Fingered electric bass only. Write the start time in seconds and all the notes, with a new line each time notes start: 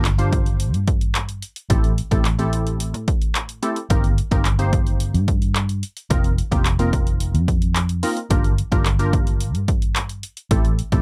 Already playing: G1
0.74 G2
1.70 A1
2.12 A1
2.94 A2
3.90 G1
4.32 G1
5.14 G2
6.11 F1
6.52 F1
7.34 F2
8.31 G1
8.72 G1
9.55 G2
10.51 A1
10.92 A1